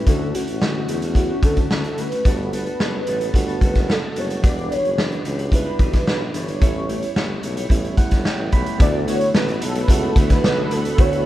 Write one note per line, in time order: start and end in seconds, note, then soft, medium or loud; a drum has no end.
0.05 0.39 D2 loud
0.05 0.33 D3 medium
0.05 0.88 A3 medium
0.05 0.33 A3 medium
0.05 0.88 C#4 medium
0.05 0.34 C#4 medium
0.05 0.89 E4 medium
0.05 0.35 F#4 medium
0.05 0.89 F#4 medium
0.05 0.36 A4 medium
0.05 kick medium
0.05 closed hi-hat medium
0.34 0.48 D3 medium
0.34 0.48 A3 soft
0.34 0.47 C#4 medium
0.34 1.16 F#4 medium
0.34 0.46 F#4 medium
0.34 closed hi-hat medium
0.47 0.80 A1 medium
0.47 0.61 A3 soft
0.47 0.61 C#4 soft
0.47 0.61 F#4 soft
0.47 closed hi-hat soft
0.61 0.87 D3 medium
0.61 0.88 A3 medium
0.61 0.89 C#4 medium
0.61 0.89 F#4 medium
0.61 snare loud
0.88 1.32 E2 medium
0.88 1.02 D3 medium
0.88 1.02 A3 medium
0.88 1.02 C#4 medium
0.88 1.01 F#4 medium
0.88 closed hi-hat medium
1.02 1.30 A3 soft
1.02 1.29 C#4 soft
1.02 1.28 F#4 soft
1.02 closed hi-hat medium
1.14 1.97 A3 medium
1.14 1.97 C#4 medium
1.14 1.98 E4 medium
1.14 1.98 F#4 medium
1.14 1.45 F#4 medium
1.14 kick medium
1.14 closed hi-hat medium
1.29 1.42 A3 soft
1.29 1.43 C#4 soft
1.29 1.43 F#4 soft
1.43 1.65 D2 medium
1.43 1.69 D3 medium
1.43 1.69 A3 medium
1.43 1.70 C#4 medium
1.43 1.71 F#4 medium
1.43 1.71 A4 medium
1.43 kick medium
1.43 closed hi-hat medium
1.57 kick medium
1.57 closed hi-hat soft
1.70 1.92 D2 medium
1.70 1.84 D3 medium
1.70 1.84 A3 medium
1.70 1.84 C#4 medium
1.70 1.82 F#4 medium
1.70 2.02 A4 medium
1.70 snare loud
1.84 1.97 A3 soft
1.84 1.98 C#4 soft
1.84 1.98 F#4 soft
1.84 closed hi-hat soft
1.97 2.11 D3 medium
1.97 2.11 A3 medium
1.97 2.11 C#4 medium
1.97 2.10 F#4 medium
1.97 3.93 B4 loud
1.97 closed hi-hat medium
2.11 2.24 A3 soft
2.11 2.25 C#4 soft
2.11 2.25 F#4 soft
2.11 closed hi-hat soft
2.24 2.69 G1 loud
2.24 2.51 G3 medium
2.24 3.07 A3 medium
2.24 3.07 B3 medium
2.24 2.52 B3 medium
2.24 3.07 D4 medium
2.24 2.52 F#4 medium
2.24 3.08 F#4 medium
2.24 2.53 A4 medium
2.24 kick loud
2.24 closed hi-hat medium
2.52 2.66 G3 soft
2.52 2.66 B3 medium
2.52 2.65 F#4 medium
2.52 2.64 A4 medium
2.52 closed hi-hat medium
2.65 2.79 B3 soft
2.65 2.80 F#4 soft
2.65 2.79 A4 medium
2.65 closed hi-hat soft
2.79 3.02 F#1 medium
2.79 3.05 G3 medium
2.79 3.06 B3 medium
2.79 3.07 F#4 medium
2.79 3.08 A4 medium
2.79 snare loud
3.07 3.29 A1 medium
3.07 3.20 G3 medium
3.07 3.21 B3 medium
3.07 3.20 F#4 medium
3.07 3.19 A4 medium
3.07 closed hi-hat medium
3.20 3.49 B3 soft
3.20 3.47 F#4 medium
3.20 3.46 A4 soft
3.20 closed hi-hat medium
3.33 3.56 G1 medium
3.33 4.16 A3 medium
3.33 4.16 B3 medium
3.33 4.17 D4 medium
3.33 4.17 F#4 medium
3.33 kick medium
3.33 closed hi-hat medium
3.48 3.61 B3 soft
3.48 3.61 F#4 medium
3.48 3.61 A4 medium
3.48 closed hi-hat soft
3.61 4.05 F#1 medium
3.61 3.87 G3 medium
3.61 3.88 B3 medium
3.61 3.88 F#4 medium
3.61 3.89 A4 medium
3.61 kick medium
3.61 closed hi-hat medium
3.75 kick medium
3.75 snare soft
3.75 closed hi-hat soft
3.88 4.02 G3 medium
3.88 4.03 B3 medium
3.88 4.02 F#4 medium
3.88 4.01 A4 medium
3.88 4.20 A4 medium
3.88 snare medium
4.02 4.15 B3 soft
4.02 4.16 F#4 soft
4.02 4.16 A4 medium
4.15 4.45 F#1 medium
4.15 4.43 G3 medium
4.15 4.43 B3 medium
4.15 4.43 F#4 medium
4.15 4.44 A4 medium
4.15 4.45 C#5 medium
4.15 closed hi-hat medium
4.30 closed hi-hat soft
4.42 4.76 E1 medium
4.42 4.69 E3 medium
4.42 5.25 G3 medium
4.42 5.25 B3 medium
4.42 4.69 D4 medium
4.42 5.25 D4 medium
4.42 5.26 F#4 medium
4.42 4.70 G4 medium
4.42 4.71 B4 medium
4.42 kick loud
4.42 closed hi-hat medium
4.46 4.75 D5 loud
4.59 closed hi-hat soft
4.70 4.84 E3 medium
4.70 4.84 D4 medium
4.70 4.83 G4 medium
4.70 4.82 B4 medium
4.70 5.27 C#5 loud
4.70 closed hi-hat medium
4.84 5.17 F#1 medium
4.84 4.97 D4 soft
4.84 4.97 G4 soft
4.84 4.98 B4 soft
4.84 closed hi-hat soft
4.97 5.23 E3 medium
4.97 5.23 D4 medium
4.97 5.24 G4 medium
4.97 5.25 B4 medium
4.97 snare loud
5.12 closed hi-hat soft
5.24 5.69 C#2 medium
5.24 5.38 E3 medium
5.24 5.39 D4 medium
5.24 5.38 G4 medium
5.24 5.37 B4 medium
5.24 closed hi-hat medium
5.38 5.66 D4 soft
5.38 5.65 G4 medium
5.38 5.64 B4 medium
5.38 closed hi-hat medium
5.51 6.34 G3 medium
5.51 6.34 B3 medium
5.51 6.35 D4 medium
5.51 6.35 E4 medium
5.51 6.04 B4 medium
5.51 kick medium
5.51 closed hi-hat medium
5.65 5.79 D4 soft
5.65 5.79 G4 soft
5.65 5.79 B4 soft
5.79 6.02 B1 medium
5.79 6.06 E3 medium
5.79 6.06 D4 medium
5.79 6.07 G4 medium
5.79 6.07 B4 medium
5.79 kick loud
5.79 closed hi-hat medium
5.93 kick medium
5.93 snare soft
5.93 closed hi-hat medium
6.07 6.36 B1 medium
6.07 6.21 E3 medium
6.07 6.21 D4 medium
6.07 6.20 G4 medium
6.07 6.18 B4 medium
6.07 6.38 B4 medium
6.07 snare loud
6.20 6.33 D4 soft
6.20 6.34 G4 soft
6.20 6.34 B4 soft
6.34 6.56 G1 medium
6.34 6.48 E3 medium
6.34 6.48 D4 medium
6.34 6.47 G4 medium
6.34 6.46 B4 medium
6.34 7.45 C#5 loud
6.34 closed hi-hat medium
6.47 6.61 D4 soft
6.47 6.61 G4 soft
6.47 6.61 B4 soft
6.47 closed hi-hat soft
6.59 7.05 A1 loud
6.59 7.43 G3 medium
6.59 6.87 A3 medium
6.59 7.43 B3 medium
6.59 7.44 C#4 medium
6.59 6.88 E4 medium
6.59 7.44 E4 medium
6.59 6.89 G4 medium
6.59 6.89 C#5 medium
6.59 kick loud
6.59 closed hi-hat medium
6.88 7.02 A3 medium
6.88 7.03 E4 medium
6.88 7.02 G4 medium
6.88 7.00 C#5 medium
6.88 closed hi-hat medium
7.02 7.15 E4 soft
7.02 7.16 G4 medium
7.02 7.16 C#5 medium
7.02 closed hi-hat soft
7.16 7.38 G1 medium
7.16 7.42 A3 medium
7.16 7.43 E4 medium
7.16 7.44 G4 medium
7.16 7.44 C#5 medium
7.16 snare loud
7.43 7.65 B1 medium
7.43 7.57 A3 medium
7.43 7.57 E4 medium
7.43 7.57 G4 medium
7.43 7.56 C#5 medium
7.43 closed hi-hat medium
7.57 7.85 E4 medium
7.57 7.84 G4 medium
7.57 7.82 C#5 medium
7.57 closed hi-hat medium
7.69 7.92 A1 medium
7.69 8.52 G3 medium
7.69 8.52 B3 medium
7.69 8.53 C#4 medium
7.69 8.53 E4 medium
7.69 kick medium
7.69 closed hi-hat medium
7.84 7.97 E4 soft
7.84 7.98 G4 medium
7.84 7.98 C#5 medium
7.84 closed hi-hat soft
7.97 8.03 G1 soft
7.97 8.23 A3 medium
7.97 8.24 E4 medium
7.97 8.25 G4 medium
7.97 8.25 C#5 medium
7.97 8.23 F#5 medium
7.97 kick medium
7.97 closed hi-hat medium
8.11 8.23 G1 medium
8.11 kick medium
8.11 snare soft
8.11 closed hi-hat soft
8.25 8.39 A3 medium
8.25 8.39 E4 medium
8.25 8.38 G4 medium
8.25 8.37 C#5 medium
8.25 8.51 G5 medium
8.25 snare loud
8.38 8.50 A1 medium
8.38 8.51 E4 soft
8.38 8.52 G4 soft
8.38 8.52 C#5 medium
8.51 8.64 B1 medium
8.51 8.79 A3 medium
8.51 8.80 E4 medium
8.51 8.80 G4 medium
8.51 8.81 C#5 medium
8.51 8.78 B5 medium
8.51 kick medium
8.51 closed hi-hat medium
8.66 closed hi-hat soft
8.78 9.24 D2 loud
8.78 9.05 D3 medium
8.78 9.00 A3 medium
8.78 9.05 A3 medium
8.78 9.00 B3 medium
8.78 9.06 B3 medium
8.78 9.01 E4 medium
8.78 9.01 F#4 medium
8.78 9.07 F#4 medium
8.78 11.26 A4 medium
8.78 9.06 D5 loud
8.78 11.26 F#5 medium
8.78 11.26 B5 medium
8.78 kick loud
8.78 closed hi-hat medium
9.05 9.32 D3 medium
9.05 9.68 A3 medium
9.05 9.33 A3 medium
9.05 9.68 B3 medium
9.05 9.33 B3 medium
9.05 9.69 E4 medium
9.05 9.69 F#4 medium
9.05 9.34 F#4 medium
9.05 9.34 C#5 loud
9.05 closed hi-hat medium
9.21 closed hi-hat soft
9.33 9.56 A1 loud
9.33 9.48 D3 medium
9.33 9.48 A3 medium
9.33 9.47 B3 medium
9.33 9.46 F#4 loud
9.33 9.65 B4 medium
9.33 snare loud
9.48 9.76 A3 medium
9.48 9.75 B3 medium
9.48 closed hi-hat soft
9.61 9.83 B1 loud
9.61 9.83 A4 medium
9.61 closed hi-hat medium
9.75 10.03 A3 medium
9.75 10.02 B3 medium
9.75 10.00 F#4 soft
9.75 closed hi-hat medium
9.83 9.91 B4 medium
9.88 10.11 C#2 loud
9.88 10.70 A3 medium
9.88 10.71 B3 medium
9.88 10.71 E4 medium
9.88 10.72 F#4 medium
9.88 10.19 A4 loud
9.88 kick medium
9.88 closed hi-hat medium
10.02 10.15 A3 soft
10.02 10.16 B3 medium
10.02 10.16 F#4 medium
10.15 10.38 D2 medium
10.15 10.42 D3 medium
10.15 10.42 A3 medium
10.15 10.43 B3 medium
10.15 10.43 F#4 medium
10.15 10.44 B4 loud
10.15 kick medium
10.15 closed hi-hat medium
10.30 kick medium
10.30 snare soft
10.30 closed hi-hat medium
10.43 10.65 B1 medium
10.43 10.69 D3 medium
10.43 10.70 A3 medium
10.43 10.71 B3 medium
10.43 10.71 F#4 loud
10.43 10.74 B4 loud
10.43 snare loud
10.70 10.93 D2 medium
10.70 10.84 D3 medium
10.70 10.85 A3 medium
10.70 10.84 B3 medium
10.70 10.83 F#4 medium
10.70 11.01 A4 medium
10.70 closed hi-hat medium
10.84 10.98 A3 soft
10.84 10.98 B3 medium
10.84 10.98 F#4 medium
10.84 closed hi-hat medium
10.97 11.26 D2 loud
10.97 11.24 D3 medium
10.97 11.18 A3 medium
10.97 11.25 A3 medium
10.97 11.18 B3 medium
10.97 11.25 B3 medium
10.97 11.19 E4 medium
10.97 11.19 F#4 medium
10.97 11.26 F#4 medium
10.97 11.26 C#5 loud
10.97 kick loud
10.97 closed hi-hat medium
11.13 closed hi-hat soft